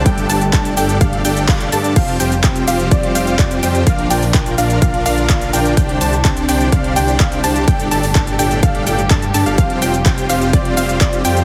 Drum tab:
CC |----------------|x---------------|----------------|----------------|
HH |xxoxxxoxxxoxoxox|xxoxxxoxxxoxxxox|xxooxxoxxxoxxxox|xxoxxxoxxxoxxxox|
SH |xxxxxxxxx-xxxxxx|x-xxxxxxx-xxxxxx|x-xxxxxxx-xxxxxx|x-xxxxxxx-xxxxxx|
CP |----x-------x---|----x-------x---|----x-------x---|----x-------x---|
BD |o---o---o---o---|o---o---o---o---|o---o---o---o---|o---o---o---o---|

CC |----------------|----------------|
HH |xxooxxoxxxoxxxox|xxoxxxoxxxoxxxox|
SH |xxxxxxxxx-xxxxxx|x-xxxxxxx-xxxxxx|
CP |----x-------x---|----x-------x---|
BD |o---o---o---o---|o---o---o---o---|